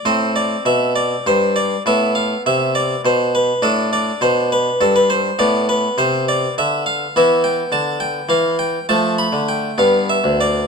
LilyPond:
<<
  \new Staff \with { instrumentName = "Harpsichord" } { \time 12/8 \key a \minor \tempo 4. = 68 c''8 d''8 e''8 d''8 c''8 d''8 e''8 f''8 e''8 d''8 c''8 b'8 | a'8 d''8 c''8 b'8 a'16 b'16 c''8 d''8 b'8 c''8 d''8 e''8 f''8 | \key e \phrygian e''8 g''8 a''8 g''8 f''8 g''8 a''8 b''8 g''8 f''8 e''8 d''8 | }
  \new Staff \with { instrumentName = "Harpsichord" } { \clef bass \time 12/8 \key a \minor << { c'2. b2. | d'2. b2. | \key e \phrygian b2. a4. b4. | } \\ { a,4 b,4 g,4 a,4 c4 b,4 | a,4 b,4 g,4 a,4 c4 d4 | e4 d4 e4 f8. d8. g,8. d,8. | } >> }
>>